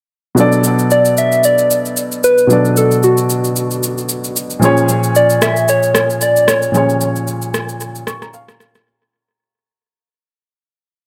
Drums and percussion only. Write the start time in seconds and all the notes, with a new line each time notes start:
0.37 shaker
0.52 shaker
0.64 shaker
0.79 shaker
0.91 shaker
1.05 shaker
1.17 shaker
1.32 shaker
1.44 shaker
1.58 shaker
1.71 shaker
1.85 shaker
1.97 shaker
2.12 shaker
2.24 shaker
2.38 shaker
2.50 shaker
2.65 shaker
2.77 shaker
2.91 shaker
3.03 shaker
3.17 shaker
3.30 shaker
3.44 shaker
3.56 shaker
3.71 shaker
3.83 shaker
3.98 shaker
4.09 shaker
4.24 shaker
4.36 shaker
4.50 shaker
4.62 shaker
4.77 shaker
4.89 shaker
5.04 shaker
5.15 shaker
5.30 shaker
5.42 cross-stick, shaker
5.56 shaker
5.68 shaker
5.83 shaker
5.95 cross-stick, shaker
6.10 shaker
6.21 shaker
6.36 shaker
6.48 cross-stick, shaker
6.62 shaker
6.74 shaker
6.89 shaker
7.01 shaker
7.16 shaker
7.27 shaker
7.42 shaker
7.54 cross-stick, shaker
7.69 shaker
7.80 shaker
7.95 shaker
8.07 cross-stick, shaker
8.22 cross-stick, shaker
8.33 shaker
8.48 cross-stick, shaker
8.60 cross-stick, shaker
8.75 cross-stick, shaker